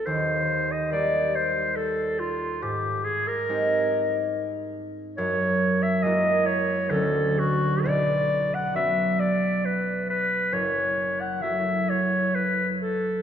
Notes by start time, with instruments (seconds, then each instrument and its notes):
Already playing: harp C4
0.06 harp D#2, clarinet C5
0.71 clarinet D#5
0.91 harp G3 A#3 D#4, clarinet D5
0.96 harp G4
1.35 clarinet C5
1.76 clarinet A4
2.19 clarinet F4
2.62 harp G#2, clarinet G4
3.04 clarinet G#4
3.27 clarinet A#4
3.49 harp G#3 C4 D#4 G4
5.17 harp F#2, clarinet C#5
5.82 clarinet E5
6.03 harp G#3 A#3 E4 F#4, clarinet D#5
6.46 clarinet C#5
6.89 harp D2 F#3 C#4, clarinet A4
6.94 harp A3 F#4
7.39 clarinet F#4
7.85 harp B1, clarinet D5
8.54 clarinet F#5
8.74 harp F#3 B3 C#4 F#4, clarinet E5
9.19 clarinet D5
9.65 clarinet B4
10.10 clarinet B4
10.52 harp F#1, clarinet C#5
11.21 clarinet F#5
11.40 harp F#3 A3 F#4, clarinet E5
11.45 harp E4
11.89 clarinet C#5
12.35 clarinet B4
12.81 clarinet A4